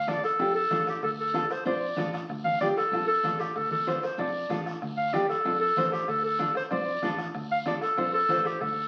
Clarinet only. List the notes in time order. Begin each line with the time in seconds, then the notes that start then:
0.08 D5
0.25 A4
0.55 A4
0.89 G4
1.03 A4
1.20 A4
1.51 C5
1.66 D5
2.44 F5
2.61 D5
2.77 A4
3.08 A4
3.39 G4
3.56 A4
3.71 A4
4.04 C5
4.20 D5
4.97 F5
5.13 D5
5.29 A4
5.61 A4
5.93 G4
6.08 A4
6.25 A4
6.56 C5
6.71 D5
7.51 F5
7.67 D5
7.82 A4
8.14 A4
8.46 G4
8.61 A4